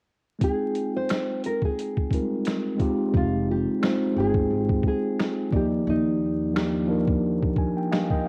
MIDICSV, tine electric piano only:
0, 0, Header, 1, 2, 480
1, 0, Start_track
1, 0, Tempo, 681818
1, 292, Time_signature, 4, 2, 24, 8
1, 5832, End_track
2, 0, Start_track
2, 0, Title_t, "Tine electric piano"
2, 0, Program_c, 0, 4
2, 273, Note_on_c, 0, 56, 59
2, 283, Note_on_c, 0, 60, 64
2, 289, Note_on_c, 0, 63, 58
2, 298, Note_on_c, 0, 65, 54
2, 309, Note_on_c, 0, 79, 68
2, 430, Control_c, 0, 64, 127
2, 1159, Note_off_c, 0, 56, 0
2, 1164, Note_off_c, 0, 60, 0
2, 1167, Note_off_c, 0, 63, 0
2, 1172, Note_off_c, 0, 65, 0
2, 1177, Note_off_c, 0, 79, 0
2, 1476, Note_on_c, 0, 55, 47
2, 1483, Note_on_c, 0, 60, 59
2, 1492, Note_on_c, 0, 63, 54
2, 1501, Note_on_c, 0, 65, 54
2, 1508, Note_on_c, 0, 70, 67
2, 1520, Note_on_c, 0, 56, 64
2, 1535, Note_off_c, 0, 55, 0
2, 1940, Note_off_c, 0, 56, 0
2, 1948, Note_off_c, 0, 60, 0
2, 1949, Note_on_c, 0, 56, 85
2, 1956, Note_on_c, 0, 60, 77
2, 1959, Note_off_c, 0, 63, 0
2, 1964, Note_off_c, 0, 65, 0
2, 1967, Note_on_c, 0, 63, 77
2, 1972, Note_on_c, 0, 65, 90
2, 1980, Note_off_c, 0, 70, 0
2, 1982, Control_c, 0, 64, 0
2, 1982, Note_on_c, 0, 67, 103
2, 2073, Control_c, 0, 64, 127
2, 2180, Note_off_c, 0, 56, 0
2, 2183, Note_off_c, 0, 60, 0
2, 2189, Note_off_c, 0, 63, 0
2, 2191, Note_off_c, 0, 65, 0
2, 2195, Note_on_c, 0, 56, 66
2, 2196, Note_off_c, 0, 67, 0
2, 2202, Note_on_c, 0, 60, 57
2, 2210, Note_on_c, 0, 63, 55
2, 2219, Control_c, 0, 64, 0
2, 2220, Note_on_c, 0, 65, 64
2, 2227, Note_on_c, 0, 67, 63
2, 2328, Control_c, 0, 64, 127
2, 2642, Note_off_c, 0, 56, 0
2, 2645, Note_off_c, 0, 60, 0
2, 2649, Note_off_c, 0, 63, 0
2, 2654, Note_off_c, 0, 65, 0
2, 2658, Note_off_c, 0, 67, 0
2, 2674, Note_on_c, 0, 56, 66
2, 2683, Note_on_c, 0, 60, 68
2, 2692, Note_on_c, 0, 63, 62
2, 2701, Note_on_c, 0, 65, 66
2, 2709, Note_on_c, 0, 72, 83
2, 2902, Note_off_c, 0, 56, 0
2, 2907, Note_off_c, 0, 60, 0
2, 2911, Note_off_c, 0, 63, 0
2, 2912, Note_on_c, 0, 56, 73
2, 2916, Note_off_c, 0, 65, 0
2, 2920, Note_off_c, 0, 72, 0
2, 2923, Note_on_c, 0, 60, 61
2, 2930, Note_on_c, 0, 63, 58
2, 2939, Note_on_c, 0, 65, 61
2, 2946, Note_on_c, 0, 79, 72
2, 3799, Note_off_c, 0, 56, 0
2, 3804, Note_off_c, 0, 60, 0
2, 3808, Note_off_c, 0, 63, 0
2, 3812, Note_off_c, 0, 65, 0
2, 3816, Note_off_c, 0, 79, 0
2, 3877, Note_on_c, 0, 53, 74
2, 3888, Note_on_c, 0, 58, 79
2, 3894, Note_on_c, 0, 74, 65
2, 3901, Control_c, 0, 64, 0
2, 3903, Note_on_c, 0, 63, 74
2, 3913, Note_on_c, 0, 67, 82
2, 4038, Control_c, 0, 64, 127
2, 4542, Note_off_c, 0, 53, 0
2, 4548, Note_off_c, 0, 58, 0
2, 4551, Note_off_c, 0, 74, 0
2, 4555, Note_off_c, 0, 63, 0
2, 4560, Note_off_c, 0, 67, 0
2, 4597, Note_on_c, 0, 53, 66
2, 4602, Note_on_c, 0, 58, 69
2, 4613, Note_on_c, 0, 62, 60
2, 4617, Note_on_c, 0, 63, 67
2, 4628, Note_on_c, 0, 67, 80
2, 4824, Note_off_c, 0, 53, 0
2, 4826, Note_off_c, 0, 58, 0
2, 4831, Note_on_c, 0, 53, 74
2, 4832, Note_off_c, 0, 62, 0
2, 4834, Note_off_c, 0, 63, 0
2, 4839, Note_off_c, 0, 67, 0
2, 4840, Note_on_c, 0, 58, 62
2, 4848, Note_on_c, 0, 62, 81
2, 4857, Note_on_c, 0, 63, 62
2, 4863, Note_on_c, 0, 70, 82
2, 5337, Note_on_c, 0, 80, 67
2, 5458, Note_off_c, 0, 80, 0
2, 5469, Note_on_c, 0, 79, 67
2, 5567, Note_off_c, 0, 79, 0
2, 5572, Note_on_c, 0, 77, 64
2, 5573, Note_on_c, 0, 75, 59
2, 5577, Note_off_c, 0, 70, 0
2, 5578, Note_on_c, 0, 67, 47
2, 5696, Note_off_c, 0, 75, 0
2, 5696, Note_off_c, 0, 77, 0
2, 5701, Note_off_c, 0, 67, 0
2, 5704, Note_on_c, 0, 75, 73
2, 5705, Note_on_c, 0, 79, 71
2, 5707, Note_on_c, 0, 70, 54
2, 5718, Note_off_c, 0, 53, 0
2, 5723, Note_off_c, 0, 58, 0
2, 5726, Note_off_c, 0, 62, 0
2, 5731, Note_off_c, 0, 63, 0
2, 5807, Note_off_c, 0, 79, 0
2, 5808, Note_off_c, 0, 70, 0
2, 5832, Note_off_c, 0, 75, 0
2, 5832, End_track
0, 0, End_of_file